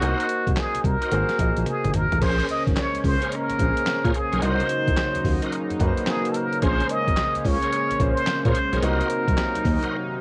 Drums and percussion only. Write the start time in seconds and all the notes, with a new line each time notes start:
0.02 closed hi-hat
0.20 closed hi-hat
0.29 closed hi-hat
0.47 kick, closed hi-hat
0.57 snare, clap, closed hi-hat
0.75 closed hi-hat
0.84 kick, closed hi-hat
1.02 closed hi-hat
1.12 closed hi-hat
1.29 snare, closed hi-hat
1.39 kick, closed hi-hat
1.57 closed hi-hat
1.66 closed hi-hat, high tom
1.84 closed hi-hat, mid tom
1.94 closed hi-hat, mid tom
2.12 closed hi-hat, floor tom
2.22 kick, closed hi-hat, crash
2.40 closed hi-hat
2.49 closed hi-hat
2.67 kick, closed hi-hat
2.76 snare, clap, closed hi-hat
2.95 closed hi-hat
3.04 kick, open hi-hat
3.22 closed hi-hat
3.32 closed hi-hat
3.50 closed hi-hat
3.59 kick, closed hi-hat
3.77 closed hi-hat
3.87 snare, clap, closed hi-hat
4.05 kick, closed hi-hat
4.14 closed hi-hat
4.33 closed hi-hat
4.42 closed hi-hat
4.60 closed hi-hat
4.69 closed hi-hat
4.87 kick, closed hi-hat
4.97 snare, clap, closed hi-hat
5.15 closed hi-hat
5.24 kick, open hi-hat
5.42 closed hi-hat
5.52 closed hi-hat
5.70 closed hi-hat
5.80 kick, closed hi-hat
5.97 closed hi-hat
6.07 snare, clap, closed hi-hat
6.25 closed hi-hat
6.34 closed hi-hat
6.52 closed hi-hat
6.62 kick, closed hi-hat
6.80 closed hi-hat
6.89 closed hi-hat
7.08 kick, closed hi-hat
7.17 snare, clap, closed hi-hat
7.35 closed hi-hat
7.45 kick, open hi-hat
7.62 closed hi-hat
7.73 closed hi-hat
7.91 closed hi-hat
8.00 kick, closed hi-hat
8.17 closed hi-hat
8.27 snare, clap, closed hi-hat
8.45 kick, closed hi-hat
8.55 closed hi-hat
8.73 closed hi-hat
8.83 closed hi-hat
9.01 closed hi-hat
9.10 closed hi-hat
9.28 kick, closed hi-hat
9.37 snare, clap, closed hi-hat
9.55 closed hi-hat
9.65 kick, open hi-hat
9.82 closed hi-hat